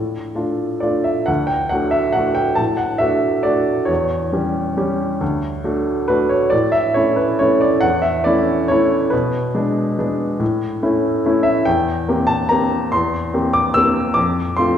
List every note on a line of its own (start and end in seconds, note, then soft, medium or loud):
0.00 0.34 A2 soft
0.00 0.79 D5 soft
0.35 0.78 A3 soft
0.35 0.78 D4 soft
0.35 0.78 F4 soft
0.80 1.24 A3 soft
0.80 1.24 D4 soft
0.80 1.25 F4 soft
0.80 1.05 D5 soft
1.04 1.27 E5 soft
1.26 1.70 D2 soft
1.26 1.48 F#5 medium
1.47 1.70 G5 medium
1.69 2.11 A3 soft
1.69 2.11 D4 soft
1.69 2.12 F#4 soft
1.69 1.92 F#5 medium
1.91 2.14 E5 medium
2.13 2.54 A3 soft
2.13 2.54 D4 soft
2.13 2.55 F#4 soft
2.13 2.36 F#5 medium
2.35 2.57 G5 medium
2.55 3.00 A2 soft
2.55 2.78 A5 medium
2.77 3.00 F#5 medium
2.98 3.41 A3 soft
2.98 3.42 D4 soft
2.98 3.42 F#4 soft
2.98 3.44 E5 medium
3.43 3.85 A3 soft
3.43 3.85 D4 soft
3.43 3.85 F#4 soft
3.43 3.88 D5 medium
3.85 4.30 E2 soft
3.85 6.07 C#5 medium
4.33 4.73 G3 soft
4.33 4.73 C#4 soft
4.33 4.73 G4 soft
4.77 5.17 G3 soft
4.77 5.17 C#4 soft
4.77 5.17 G4 soft
5.21 5.63 D2 soft
5.64 6.05 A3 soft
5.64 6.06 D4 soft
5.64 6.06 F#4 soft
6.08 6.49 A3 soft
6.08 6.49 D4 soft
6.08 6.49 F#4 soft
6.08 6.31 B4 medium
6.29 6.51 C#5 medium
6.50 6.93 A2 soft
6.50 6.72 D5 medium
6.72 6.94 E5 medium
6.94 7.36 A3 soft
6.94 7.36 C#4 soft
6.94 7.36 E4 soft
6.94 7.17 C#5 medium
7.16 7.39 B4 medium
7.39 7.80 A3 soft
7.39 7.80 C#4 soft
7.39 7.80 E4 soft
7.39 7.61 C#5 medium
7.61 7.83 D5 medium
7.81 8.24 E2 soft
7.81 8.03 F#5 medium
8.02 8.24 E5 medium
8.24 8.65 A3 soft
8.24 8.66 C#4 soft
8.24 8.66 E4 soft
8.24 8.69 D5 medium
8.68 9.08 A3 soft
8.68 9.09 C#4 soft
8.68 9.09 E4 soft
8.68 9.11 C#5 medium
9.10 9.54 B2 soft
9.10 11.23 B4 medium
9.55 9.94 G#3 soft
9.55 9.94 B3 soft
9.55 9.94 D4 soft
9.99 10.37 G#3 soft
9.99 10.37 B3 soft
9.99 10.37 D4 soft
10.39 10.80 A2 soft
10.83 11.21 A3 soft
10.83 11.21 C#4 soft
10.83 11.21 E4 soft
11.26 11.62 A3 soft
11.26 11.63 C#4 soft
11.26 11.63 E4 soft
11.43 11.65 E5 medium
11.65 12.06 E2 soft
11.65 12.28 G5 medium
12.08 12.46 A#3 soft
12.08 12.46 C4 soft
12.08 12.46 G4 soft
12.27 12.49 A5 medium
12.49 12.89 A#3 soft
12.49 12.89 C4 soft
12.49 12.89 G4 soft
12.49 12.91 A#5 medium
12.92 13.33 E2 soft
12.92 13.54 C6 medium
13.34 13.71 A#3 soft
13.34 13.71 C4 soft
13.34 13.71 G4 soft
13.53 13.74 D6 medium
13.74 14.13 A#3 soft
13.74 14.13 C4 soft
13.74 14.13 G4 soft
13.74 14.16 E6 medium
14.14 14.57 F2 soft
14.14 14.57 D6 medium
14.57 14.78 A3 soft
14.57 14.78 C4 soft
14.57 14.78 F4 soft
14.57 14.78 C6 medium